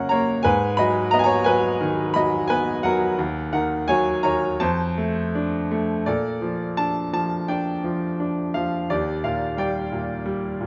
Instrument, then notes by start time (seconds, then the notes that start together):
grand piano
Already playing: F#2 C#3 A#3 C#4 A#4 D#5 F5 F#5
0.09 A#3 C#5 A#5
0.43 G#2 B4 G#5
0.77 F#3 D#5 B5
1.11 B3 D#5 A#5
1.19 G#5
1.24 C#5 A#5
1.44 F#3 B4 G#5
1.81 D#3
2.14 F#3 D#5 B5
2.48 B3 B4 G#5
2.83 F#3 A#4 F#5
3.19 D#2
3.53 D#3 A#4 F#5
3.88 F#3 C#5 G#5
4.23 D#3 C#5 A#5
4.60 F2 C5 A5
4.98 A3
5.35 D4
5.71 A3
6.06 A#2 A4 D5
6.42 F3
6.77 D4 A5
7.13 F3 A5
7.48 D4 D5 G5
7.84 F3
8.20 D4
8.54 F3 F5
8.90 D#2 G4 D5
9.24 A#2 F5
9.57 G3 D5 G5
9.92 A#2
10.26 G3
10.61 A#2